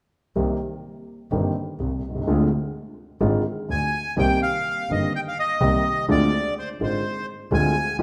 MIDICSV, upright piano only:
0, 0, Header, 1, 2, 480
1, 0, Start_track
1, 0, Key_signature, -3, "minor"
1, 0, Tempo, 477327
1, 360, Time_signature, 4, 2, 24, 8
1, 8070, End_track
2, 0, Start_track
2, 0, Title_t, "Upright piano"
2, 0, Program_c, 0, 0
2, 358, Note_on_c, 0, 58, 48
2, 359, Note_on_c, 0, 51, 53
2, 361, Note_on_c, 0, 48, 64
2, 362, Note_on_c, 0, 36, 64
2, 362, Note_on_c, 0, 60, 48
2, 363, Note_on_c, 0, 67, 55
2, 562, Note_off_c, 0, 51, 0
2, 562, Note_off_c, 0, 58, 0
2, 563, Note_off_c, 0, 48, 0
2, 564, Note_off_c, 0, 36, 0
2, 564, Note_off_c, 0, 60, 0
2, 564, Note_off_c, 0, 67, 0
2, 1320, Note_on_c, 0, 51, 58
2, 1323, Note_on_c, 0, 31, 65
2, 1323, Note_on_c, 0, 58, 49
2, 1326, Note_on_c, 0, 43, 59
2, 1326, Note_on_c, 0, 60, 47
2, 1326, Note_on_c, 0, 67, 59
2, 1523, Note_off_c, 0, 51, 0
2, 1524, Note_off_c, 0, 31, 0
2, 1524, Note_off_c, 0, 58, 0
2, 1526, Note_off_c, 0, 43, 0
2, 1526, Note_off_c, 0, 60, 0
2, 1526, Note_off_c, 0, 67, 0
2, 1809, Note_on_c, 0, 36, 46
2, 1812, Note_on_c, 0, 48, 47
2, 2005, Note_off_c, 0, 36, 0
2, 2007, Note_off_c, 0, 48, 0
2, 2099, Note_on_c, 0, 35, 38
2, 2159, Note_off_c, 0, 35, 0
2, 2165, Note_on_c, 0, 36, 47
2, 2221, Note_off_c, 0, 36, 0
2, 2225, Note_on_c, 0, 37, 55
2, 2281, Note_off_c, 0, 37, 0
2, 2285, Note_on_c, 0, 56, 52
2, 2286, Note_on_c, 0, 38, 67
2, 2286, Note_on_c, 0, 50, 70
2, 2288, Note_on_c, 0, 60, 51
2, 2292, Note_on_c, 0, 65, 64
2, 2481, Note_off_c, 0, 38, 0
2, 2481, Note_off_c, 0, 56, 0
2, 2482, Note_off_c, 0, 50, 0
2, 2482, Note_off_c, 0, 60, 0
2, 2484, Note_off_c, 0, 65, 0
2, 3222, Note_on_c, 0, 50, 51
2, 3223, Note_on_c, 0, 32, 63
2, 3224, Note_on_c, 0, 56, 54
2, 3224, Note_on_c, 0, 60, 53
2, 3225, Note_on_c, 0, 44, 71
2, 3230, Note_on_c, 0, 65, 67
2, 3428, Note_off_c, 0, 50, 0
2, 3429, Note_off_c, 0, 32, 0
2, 3429, Note_off_c, 0, 56, 0
2, 3430, Note_off_c, 0, 44, 0
2, 3430, Note_off_c, 0, 60, 0
2, 3433, Note_off_c, 0, 65, 0
2, 3707, Note_on_c, 0, 38, 45
2, 3708, Note_on_c, 0, 50, 47
2, 3913, Note_off_c, 0, 38, 0
2, 3914, Note_off_c, 0, 50, 0
2, 4186, Note_on_c, 0, 51, 61
2, 4191, Note_on_c, 0, 48, 68
2, 4192, Note_on_c, 0, 36, 67
2, 4193, Note_on_c, 0, 58, 51
2, 4194, Note_on_c, 0, 60, 53
2, 4194, Note_on_c, 0, 67, 65
2, 4394, Note_off_c, 0, 51, 0
2, 4397, Note_off_c, 0, 36, 0
2, 4397, Note_off_c, 0, 48, 0
2, 4398, Note_off_c, 0, 58, 0
2, 4398, Note_off_c, 0, 60, 0
2, 4398, Note_off_c, 0, 67, 0
2, 4924, Note_on_c, 0, 31, 47
2, 4924, Note_on_c, 0, 58, 34
2, 4926, Note_on_c, 0, 51, 38
2, 4928, Note_on_c, 0, 43, 49
2, 4929, Note_on_c, 0, 60, 33
2, 4930, Note_on_c, 0, 67, 41
2, 5126, Note_off_c, 0, 31, 0
2, 5126, Note_off_c, 0, 58, 0
2, 5127, Note_off_c, 0, 51, 0
2, 5128, Note_off_c, 0, 43, 0
2, 5129, Note_off_c, 0, 60, 0
2, 5129, Note_off_c, 0, 67, 0
2, 5636, Note_on_c, 0, 51, 60
2, 5638, Note_on_c, 0, 58, 55
2, 5638, Note_on_c, 0, 60, 61
2, 5639, Note_on_c, 0, 36, 66
2, 5640, Note_on_c, 0, 48, 73
2, 5644, Note_on_c, 0, 67, 70
2, 5842, Note_off_c, 0, 51, 0
2, 5843, Note_off_c, 0, 36, 0
2, 5843, Note_off_c, 0, 58, 0
2, 5843, Note_off_c, 0, 60, 0
2, 5844, Note_off_c, 0, 48, 0
2, 5846, Note_off_c, 0, 67, 0
2, 6119, Note_on_c, 0, 50, 73
2, 6120, Note_on_c, 0, 38, 70
2, 6121, Note_on_c, 0, 56, 53
2, 6125, Note_on_c, 0, 60, 52
2, 6125, Note_on_c, 0, 65, 65
2, 6323, Note_off_c, 0, 38, 0
2, 6323, Note_off_c, 0, 56, 0
2, 6325, Note_off_c, 0, 50, 0
2, 6326, Note_off_c, 0, 60, 0
2, 6326, Note_off_c, 0, 65, 0
2, 6845, Note_on_c, 0, 50, 38
2, 6845, Note_on_c, 0, 60, 35
2, 6846, Note_on_c, 0, 56, 36
2, 6847, Note_on_c, 0, 44, 48
2, 6847, Note_on_c, 0, 65, 46
2, 6850, Note_on_c, 0, 32, 47
2, 7045, Note_off_c, 0, 50, 0
2, 7045, Note_off_c, 0, 56, 0
2, 7045, Note_off_c, 0, 60, 0
2, 7046, Note_off_c, 0, 44, 0
2, 7046, Note_off_c, 0, 65, 0
2, 7047, Note_off_c, 0, 32, 0
2, 7557, Note_on_c, 0, 50, 73
2, 7560, Note_on_c, 0, 56, 60
2, 7562, Note_on_c, 0, 38, 75
2, 7565, Note_on_c, 0, 60, 54
2, 7565, Note_on_c, 0, 65, 67
2, 7760, Note_off_c, 0, 50, 0
2, 7760, Note_off_c, 0, 56, 0
2, 7761, Note_off_c, 0, 38, 0
2, 7763, Note_off_c, 0, 60, 0
2, 7763, Note_off_c, 0, 65, 0
2, 8031, Note_on_c, 0, 51, 66
2, 8032, Note_on_c, 0, 57, 53
2, 8033, Note_on_c, 0, 60, 52
2, 8034, Note_on_c, 0, 65, 69
2, 8035, Note_on_c, 0, 53, 73
2, 8036, Note_on_c, 0, 41, 68
2, 8070, Note_off_c, 0, 41, 0
2, 8070, Note_off_c, 0, 51, 0
2, 8070, Note_off_c, 0, 53, 0
2, 8070, Note_off_c, 0, 57, 0
2, 8070, Note_off_c, 0, 60, 0
2, 8070, Note_off_c, 0, 65, 0
2, 8070, End_track
0, 0, End_of_file